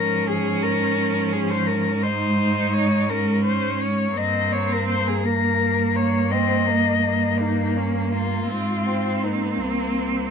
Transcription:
0.00 4.12 G#2 medium
0.00 0.93 F3 medium
0.00 2.05 C#4 medium
0.00 0.28 A#4 medium
0.27 0.64 G#4 medium
0.62 1.34 A#4 medium
0.97 2.00 F3 medium
1.32 1.52 G#4 medium
1.51 1.68 C5 medium
1.67 2.04 A#4 medium
2.02 4.12 G#3 medium
2.02 3.11 D#4 medium
2.02 2.75 C5 medium
2.73 3.11 C#5 medium
3.09 4.16 C#4 medium
3.09 3.45 A#4 medium
3.45 3.82 C5 medium
3.81 4.19 C#5 medium
4.16 8.45 G2 medium
4.16 6.33 A#3 medium
4.16 5.25 C4 medium
4.16 4.54 D#5 medium
4.53 4.74 C#5 medium
4.72 4.89 A#4 medium
4.89 5.09 C5 medium
5.08 5.27 G#4 medium
5.24 7.39 A#3 medium
5.24 5.97 A#4 medium
5.96 6.33 C#5 medium
6.31 6.68 C4 medium
6.31 7.42 D#5 medium
6.67 7.02 A#3 medium
7.02 8.51 A#3 medium
7.40 8.47 A#3 medium
7.40 7.78 D#4 medium
7.77 8.13 C#4 medium
8.12 9.24 F4 medium
8.49 9.60 G#2 medium
8.49 8.88 G#3 medium
8.49 10.30 C4 medium
8.87 9.25 C4 medium
9.22 10.30 A#3 medium
9.22 9.60 D#4 medium
9.59 10.30 C2 soft
9.59 10.30 C4 medium

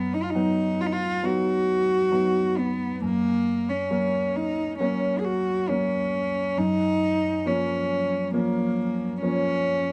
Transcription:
0.00 2.99 F#2 medium
0.00 0.16 B3 medium
0.14 0.25 D#4 medium
0.23 0.31 F4 medium
0.30 0.83 D#4 medium
0.35 1.22 F#3 soft
0.35 1.22 B3 soft
0.35 1.22 D#4 soft
0.81 0.88 F4 medium
0.86 0.94 D#4 medium
0.93 1.27 F4 medium
1.23 2.10 F#3 soft
1.23 2.11 B3 soft
1.23 2.10 D#4 soft
1.23 2.60 F#4 medium
2.11 2.99 F#3 soft
2.11 2.99 B3 soft
2.11 2.99 D#4 soft
2.58 3.03 B3 medium
3.02 6.53 F#2 medium
3.02 3.71 A#3 medium
3.69 4.37 C#4 medium
3.90 4.77 F#3 soft
3.90 4.77 A#3 soft
3.90 4.77 C#4 soft
4.36 4.78 D#4 medium
4.79 5.66 F#3 soft
4.79 5.66 A#3 soft
4.79 5.20 C#4 medium
4.79 5.66 C#4 soft
5.19 5.26 G#4 medium
5.25 5.71 F#4 medium
5.69 6.55 F#3 soft
5.69 6.55 A#3 soft
5.69 6.60 C#4 medium
5.69 6.55 C#4 soft
6.58 9.92 F#2 medium
6.58 7.48 D#4 medium
7.45 8.31 F3 soft
7.45 8.31 A#3 soft
7.45 8.31 C#4 soft
7.45 8.34 C#4 medium
8.33 9.19 F3 soft
8.33 9.19 A#3 soft
8.33 9.19 A#3 medium
8.33 9.19 C#4 soft
9.22 9.92 F3 soft
9.22 9.92 A#3 soft
9.22 9.92 C#4 medium
9.22 9.92 C#4 soft

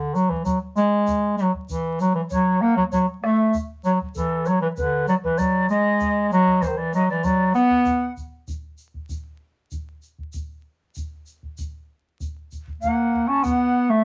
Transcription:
0.00 0.16 D3 medium
0.15 0.31 F#3 medium
0.15 shaker medium
0.30 0.44 E3 medium
0.30 bombo low medium
0.44 0.59 F#3 medium
0.44 bombo low medium
0.44 shaker medium
0.76 1.34 G#3 loud
0.76 shaker medium
1.07 bombo low medium
1.07 shaker medium
1.37 1.51 F#3 medium
1.37 shaker medium
1.54 bombo low soft
1.69 1.98 E3 medium
1.69 bombo low medium
1.69 shaker medium
2.00 2.14 F#3 medium
2.00 shaker medium
2.15 2.22 E3 medium
2.30 2.63 F#3 medium
2.30 2.64 C#5 medium
2.30 bombo low medium
2.30 shaker medium
2.61 2.76 A#3 loud
2.61 2.77 F#5 medium
2.77 2.84 F#3 medium
2.77 2.84 C#5 medium
2.77 bombo low medium
2.91 3.07 F#3 medium
2.91 2.98 C#5 medium
2.91 bombo low medium
2.91 shaker medium
3.23 3.55 A3 medium
3.23 3.55 E5 medium
3.23 bombo rim medium
3.53 bombo low medium
3.53 shaker medium
3.84 3.99 F#3 medium
3.84 3.92 C#5 medium
3.84 shaker medium
4.01 bombo low medium
4.15 4.49 E3 medium
4.15 4.47 A4 medium
4.15 bombo low medium
4.15 shaker medium
4.46 4.61 F#3 medium
4.46 4.61 C#5 medium
4.46 shaker medium
4.61 4.68 E3 medium
4.61 4.67 B4 medium
4.76 5.05 D3 medium
4.76 5.06 B4 medium
4.76 bombo low medium
4.76 shaker medium
5.08 5.15 F#3 medium
5.08 5.15 D5 medium
5.08 shaker medium
5.24 5.40 E3 medium
5.24 5.39 B4 medium
5.24 bombo low medium
5.38 5.69 F#3 medium
5.38 5.69 D5 medium
5.38 bombo low medium
5.38 shaker loud
5.69 6.27 G#3 loud
5.69 6.27 D#5 loud
5.69 shaker medium
6.00 bombo low medium
6.00 shaker medium
6.32 6.64 F#3 loud
6.32 6.64 D#5 medium
6.32 shaker medium
6.47 bombo low soft
6.62 6.70 E3 medium
6.62 6.69 C5 medium
6.62 bombo low medium
6.62 shaker medium
6.69 6.79 D#3 medium
6.69 6.79 C5 medium
6.77 6.93 E3 medium
6.77 6.94 D5 medium
6.93 7.08 F#3 medium
6.93 7.08 D#5 medium
6.93 shaker medium
7.10 7.26 E3 medium
7.10 7.24 D5 medium
7.24 7.54 F#3 medium
7.24 7.53 D5 medium
7.24 bombo low medium
7.24 shaker medium
7.54 8.12 B3 loud
7.54 8.12 F#5 medium
7.54 shaker medium
7.70 bombo low medium
7.85 bombo low medium
7.85 shaker medium
8.17 bombo low medium
8.17 shaker medium
8.48 bombo low medium
8.48 shaker medium
8.78 shaker medium
8.94 bombo low soft
9.09 bombo low medium
9.09 shaker medium
9.71 bombo low medium
9.71 shaker medium
10.02 shaker medium
10.19 bombo low soft
10.33 bombo low medium
10.33 shaker medium
10.95 bombo low medium
10.95 shaker medium
11.26 shaker medium
11.43 bombo low soft
11.58 bombo low medium
11.58 shaker medium
12.20 bombo low medium
12.20 shaker medium
12.51 bombo low soft
12.51 shaker medium
12.68 bombo low medium
12.81 13.29 A#3 medium
12.81 13.30 F#5 medium
12.81 bombo low medium
12.81 shaker medium
13.14 bombo low soft
13.28 13.45 C#4 medium
13.28 13.45 A5 medium
13.43 13.91 B3 loud
13.43 13.92 F#5 medium
13.43 bombo low medium
13.43 shaker loud
13.90 14.04 A3 loud
13.90 14.04 E5 medium

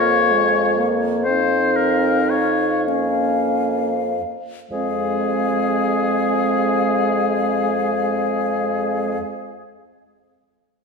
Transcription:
0.00 4.20 F2 soft
0.00 0.32 A#3 soft
0.00 0.92 F4 medium
0.00 0.91 C#5 medium
0.00 0.87 F5 soft
0.31 0.76 G#3 soft
0.77 1.28 A#3 soft
1.24 2.48 C4 soft
1.24 2.89 D#4 soft
1.24 1.77 C5 medium
1.24 2.82 F5 soft
1.76 2.32 A#4 soft
2.30 2.86 C#5 medium
2.86 4.20 A#3 soft
2.86 4.25 C#4 soft
2.86 4.21 F5 soft
4.71 9.19 F2 soft
4.71 9.19 G#3 soft
4.71 9.20 C4 soft
4.71 9.19 G#4 soft
4.71 9.18 F5 soft

